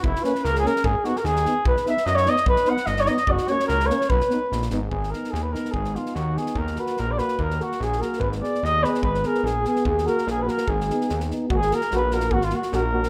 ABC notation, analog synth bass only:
X:1
M:2/4
L:1/8
Q:1/4=146
K:none
V:1 name="Analog synth bass" clef=bass
^F,,, z ^C,,2 | ^G,,, z ^D,,2 | B,,, z ^F,,2 | B,,, z G,,,2 |
^F,,, z ^C,,2 | B,,, z ^A,,, ^G,,, | _A,,,2 _E,,2 | _A,,,2 _E,,2 |
_E,,2 _B,,,2 | _E,,2 _B,,,2 | _A,,,2 _E,,2 | _A,,,2 _B,,,2 |
_E,,2 _B,,,2 | _A,,,2 _E,,2 | _A,,,2 _B,,,2 | _A,,,2 _B,,,2 |]